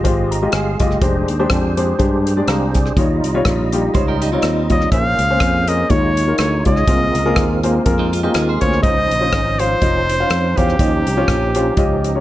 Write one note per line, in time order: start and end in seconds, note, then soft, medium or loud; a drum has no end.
0.00 1.01 G#3 medium
0.00 0.98 F4 medium
0.00 0.50 G4 medium
0.00 0.50 D#5 medium
0.04 0.46 G#1 medium
0.04 0.34 G#3 medium
0.04 0.34 F4 medium
0.04 0.34 G4 medium
0.04 0.34 C5 medium
0.04 kick medium
0.04 closed hi-hat medium
0.31 0.52 A#5 medium
0.31 closed hi-hat medium
0.42 0.70 G#3 medium
0.42 0.70 F4 medium
0.42 0.70 G4 medium
0.42 0.70 D#5 medium
0.52 0.76 G1 medium
0.52 0.79 G#4 medium
0.52 0.79 F5 medium
0.52 0.79 G#5 medium
0.52 cross-stick loud
0.52 closed hi-hat medium
0.80 0.99 F#1 medium
0.80 0.97 G#3 medium
0.80 0.96 F4 medium
0.80 0.96 G4 medium
0.80 1.00 G4 medium
0.80 1.27 D#5 medium
0.80 0.97 D#5 medium
0.80 kick medium
0.80 cross-stick soft
0.80 closed hi-hat medium
0.91 cross-stick soft
1.01 1.25 F1 loud
1.01 1.31 G#3 medium
1.01 1.08 C#4 medium
1.01 1.32 D4 medium
1.01 2.93 G4 medium
1.01 1.31 G4 medium
1.01 2.93 G#4 medium
1.01 2.93 C5 medium
1.01 1.31 C5 medium
1.01 kick loud
1.01 closed hi-hat medium
1.08 2.96 D4 medium
1.28 1.47 D#2 medium
1.28 closed hi-hat medium
1.39 1.67 G#3 medium
1.39 1.67 D4 medium
1.39 1.67 G4 medium
1.39 1.67 C5 loud
1.50 1.92 F2 medium
1.50 kick medium
1.50 cross-stick loud
1.50 closed hi-hat medium
1.77 1.94 G#3 medium
1.77 1.94 D4 medium
1.77 1.94 G4 medium
1.77 1.94 C5 medium
1.77 closed hi-hat medium
1.99 2.41 G2 medium
1.99 2.29 G#3 medium
1.99 2.29 D4 medium
1.99 2.29 G4 medium
1.99 2.29 C5 medium
1.99 kick medium
1.99 closed hi-hat medium
2.27 closed hi-hat medium
2.37 2.65 G#3 medium
2.37 2.65 D4 medium
2.37 2.48 G4 medium
2.37 2.48 D5 medium
2.48 2.89 C2 medium
2.48 2.74 F5 medium
2.48 2.74 A#5 medium
2.48 cross-stick medium
2.48 closed hi-hat medium
2.75 3.22 G#4 medium
2.75 3.22 D5 medium
2.75 kick medium
2.75 cross-stick soft
2.75 closed hi-hat medium
2.86 cross-stick soft
2.97 3.20 D#2 loud
2.97 3.69 D#3 medium
2.97 3.03 F#3 medium
2.97 3.27 G3 medium
2.97 4.88 D#4 medium
2.97 3.27 D#4 medium
2.97 4.88 F4 medium
2.97 3.27 F4 medium
2.97 3.27 C#5 medium
2.97 4.88 D#5 medium
2.97 kick loud
2.97 closed hi-hat medium
3.03 4.91 G3 medium
3.24 3.42 C2 medium
3.24 closed hi-hat medium
3.34 3.62 G3 medium
3.34 3.62 D#4 medium
3.34 3.62 F4 medium
3.34 3.62 C#5 loud
3.45 3.87 A#1 medium
3.45 kick medium
3.45 cross-stick medium
3.45 closed hi-hat medium
3.72 3.89 G3 medium
3.72 3.89 D#4 medium
3.72 3.89 F4 medium
3.72 3.89 G4 medium
3.72 closed hi-hat medium
3.94 4.36 C#2 medium
3.94 4.24 G3 medium
3.94 4.24 D#4 medium
3.94 4.24 F4 medium
3.94 4.08 C5 medium
3.94 4.24 C#5 medium
3.94 kick loud
3.94 closed hi-hat medium
4.08 4.20 G4 medium
4.08 4.21 A#4 medium
4.22 4.31 D#4 medium
4.22 4.31 G4 medium
4.22 closed hi-hat medium
4.32 4.60 G3 medium
4.32 4.89 C4 medium
4.32 4.89 D#4 medium
4.32 4.60 D#4 medium
4.32 4.60 F4 medium
4.32 4.60 C#5 medium
4.42 4.85 D#2 medium
4.42 cross-stick medium
4.42 closed hi-hat medium
4.70 4.86 G3 medium
4.70 4.86 D#4 medium
4.70 4.86 F4 medium
4.70 4.86 C#5 medium
4.70 4.91 D#5 medium
4.70 kick medium
4.70 closed hi-hat medium
4.81 cross-stick soft
4.91 5.15 A#1 medium
4.91 5.64 A#2 medium
4.91 5.88 A#3 medium
4.91 5.22 A#3 medium
4.91 5.88 C#4 soft
4.91 5.22 C#4 medium
4.91 5.87 G#4 medium
4.91 5.22 G#4 medium
4.91 4.99 B4 medium
4.91 5.22 C5 medium
4.91 5.70 F5 medium
4.91 kick loud
4.91 closed hi-hat medium
4.97 5.91 C5 medium
5.19 5.38 C#2 medium
5.19 closed hi-hat medium
5.30 5.58 A#3 medium
5.30 5.58 C#4 medium
5.30 5.58 G#4 medium
5.30 5.58 C5 medium
5.40 5.82 F2 medium
5.40 kick medium
5.40 cross-stick loud
5.40 closed hi-hat medium
5.68 5.84 A#3 medium
5.68 5.84 C#4 medium
5.68 5.85 G#4 medium
5.68 5.84 A#4 medium
5.68 5.92 D#5 medium
5.68 closed hi-hat medium
5.89 6.32 D#2 medium
5.89 6.62 D#3 medium
5.89 6.85 G#3 medium
5.89 6.20 G#3 medium
5.89 6.85 D#4 soft
5.89 6.20 D#4 medium
5.89 6.85 F4 medium
5.89 6.20 F4 medium
5.89 6.85 C#5 medium
5.89 6.20 C#5 medium
5.89 6.39 C#5 medium
5.89 kick medium
5.89 closed hi-hat medium
6.17 closed hi-hat medium
6.27 6.55 G#3 medium
6.27 6.55 D#4 medium
6.27 6.55 F4 medium
6.27 6.55 A#4 medium
6.38 6.62 D2 medium
6.38 6.64 C#5 medium
6.38 cross-stick medium
6.38 closed hi-hat medium
6.65 6.85 C#2 medium
6.65 6.82 G#3 medium
6.65 6.82 D#4 medium
6.65 6.82 F4 medium
6.65 6.82 C#5 medium
6.65 7.60 D#5 medium
6.65 kick medium
6.65 closed hi-hat medium
6.76 cross-stick soft
6.87 7.11 C2 medium
6.87 7.60 C3 medium
6.87 8.80 G#3 medium
6.87 7.17 A#3 medium
6.87 8.80 C4 medium
6.87 7.17 F4 medium
6.87 8.80 F4 medium
6.87 7.17 G#4 medium
6.87 8.80 A#4 medium
6.87 7.17 C5 medium
6.87 kick loud
6.87 closed hi-hat medium
7.15 7.33 C#2 medium
7.15 closed hi-hat medium
7.25 7.53 A#3 medium
7.25 7.53 F4 medium
7.25 7.53 G#4 medium
7.25 7.53 A#4 loud
7.36 7.78 D#2 medium
7.36 kick medium
7.36 cross-stick loud
7.36 closed hi-hat medium
7.63 7.80 A#3 medium
7.63 7.80 F4 medium
7.63 7.80 G#4 medium
7.63 7.80 C5 medium
7.63 closed hi-hat medium
7.86 8.28 F2 medium
7.86 8.15 A#3 medium
7.86 8.15 F4 medium
7.86 8.15 G#4 medium
7.86 8.15 A#4 loud
7.86 kick loud
7.86 closed hi-hat medium
7.99 8.12 C4 medium
7.99 8.12 D#4 medium
8.13 8.23 F4 medium
8.13 closed hi-hat medium
8.23 8.51 A#3 medium
8.23 8.34 D#4 medium
8.23 8.51 F4 medium
8.23 8.34 G4 medium
8.23 8.51 G#4 medium
8.23 8.51 D#5 medium
8.34 8.58 D#2 medium
8.34 8.47 F4 medium
8.34 8.47 G#4 medium
8.34 cross-stick medium
8.34 closed hi-hat medium
8.49 8.82 G#4 medium
8.49 8.82 C5 medium
8.61 8.80 D2 medium
8.61 8.78 A#3 medium
8.61 8.78 F4 medium
8.61 8.78 G#4 medium
8.61 8.78 C5 medium
8.61 8.82 C#5 medium
8.61 kick medium
8.61 cross-stick soft
8.61 closed hi-hat medium
8.73 cross-stick soft
8.82 9.06 C#2 loud
8.82 9.55 C#3 medium
8.82 10.76 F3 medium
8.82 9.13 C#4 medium
8.82 10.76 C#4 medium
8.82 10.76 D#4 medium
8.82 9.13 F4 medium
8.82 9.13 C5 medium
8.82 10.75 C5 medium
8.82 9.13 D#5 medium
8.82 9.61 D#5 loud
8.82 kick loud
8.82 closed hi-hat medium
9.11 9.29 A#1 medium
9.11 closed hi-hat medium
9.21 9.49 C#4 medium
9.21 9.49 F4 medium
9.21 9.49 C5 medium
9.21 9.49 D#5 medium
9.33 9.74 G#1 medium
9.33 kick medium
9.33 cross-stick loud
9.33 closed hi-hat medium
9.59 9.76 C#4 medium
9.59 9.76 F4 medium
9.59 9.76 C5 medium
9.59 10.59 C5 loud
9.59 9.76 F5 medium
9.59 closed hi-hat medium
9.82 10.23 F1 medium
9.82 10.11 C#4 medium
9.82 10.11 F4 medium
9.82 10.11 C5 medium
9.82 10.11 D#5 medium
9.82 kick medium
9.82 closed hi-hat medium
10.09 closed hi-hat medium
10.20 10.47 C#4 medium
10.20 10.47 F4 medium
10.20 10.47 C5 medium
10.20 10.47 F5 medium
10.30 10.53 F2 medium
10.30 cross-stick loud
10.30 closed hi-hat medium
10.57 10.76 E2 medium
10.57 10.74 C#4 medium
10.57 10.74 F4 medium
10.57 12.20 G4 medium
10.57 10.74 C5 medium
10.57 10.74 F5 medium
10.57 kick medium
10.57 cross-stick soft
10.57 closed hi-hat medium
10.69 cross-stick soft
10.79 11.02 D#2 medium
10.79 11.51 D#3 medium
10.79 12.20 F3 medium
10.79 12.20 C#4 medium
10.79 11.09 C#4 medium
10.79 12.20 D#4 medium
10.79 11.09 F4 medium
10.79 12.20 G4 medium
10.79 11.09 G4 medium
10.79 11.09 D#5 medium
10.79 kick loud
10.79 closed hi-hat medium
11.07 11.25 C2 medium
11.07 closed hi-hat medium
11.17 11.45 C#4 medium
11.17 11.45 F4 medium
11.17 11.45 G4 medium
11.17 11.45 C#5 medium
11.28 11.70 A#1 medium
11.28 kick medium
11.28 cross-stick medium
11.28 closed hi-hat medium
11.55 11.72 C#4 medium
11.55 11.72 F4 medium
11.55 11.72 G4 medium
11.55 11.72 C5 medium
11.55 closed hi-hat medium
11.77 12.19 C#2 medium
11.77 12.07 C#4 medium
11.77 12.07 F4 medium
11.77 12.07 G4 medium
11.77 12.03 D#5 medium
11.77 kick loud
11.77 closed hi-hat medium
12.04 12.20 D#5 medium
12.04 closed hi-hat medium
12.15 12.20 C#4 medium
12.15 12.20 F4 medium
12.15 12.20 G4 medium
12.15 12.20 C#5 medium